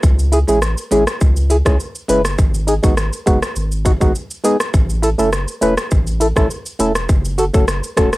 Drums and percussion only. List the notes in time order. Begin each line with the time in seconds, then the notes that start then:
0.03 kick, shaker
0.19 shaker
0.33 closed hi-hat, shaker
0.48 shaker
0.62 cross-stick, shaker
0.78 shaker
0.92 closed hi-hat, shaker
1.07 cross-stick, shaker
1.21 kick, shaker
1.37 shaker
1.50 closed hi-hat, shaker
1.66 kick, cross-stick, shaker
1.80 shaker
1.95 shaker
2.09 closed hi-hat, shaker
2.25 cross-stick, shaker
2.39 kick, shaker
2.54 shaker
2.68 closed hi-hat, shaker
2.84 kick, shaker
2.97 cross-stick, shaker
3.13 shaker
3.27 kick, closed hi-hat, shaker
3.43 cross-stick, shaker
3.56 shaker
3.72 shaker
3.86 kick, closed hi-hat, shaker
4.01 kick, shaker
4.15 shaker
4.31 shaker
4.44 closed hi-hat, shaker
4.60 cross-stick, shaker
4.74 kick, shaker
4.90 shaker
5.03 closed hi-hat, shaker
5.19 shaker
5.33 cross-stick, shaker
5.48 shaker
5.62 closed hi-hat, shaker
5.78 cross-stick, shaker
5.91 kick, shaker
6.07 shaker
6.21 closed hi-hat, shaker
6.37 kick, cross-stick, shaker
6.51 shaker
6.66 shaker
6.80 closed hi-hat, shaker
6.95 cross-stick, shaker
7.09 kick, shaker
7.25 shaker
7.38 closed hi-hat, shaker
7.54 kick, shaker
7.68 cross-stick, shaker
7.83 shaker
7.97 kick, cross-stick, closed hi-hat, shaker
8.13 cross-stick, shaker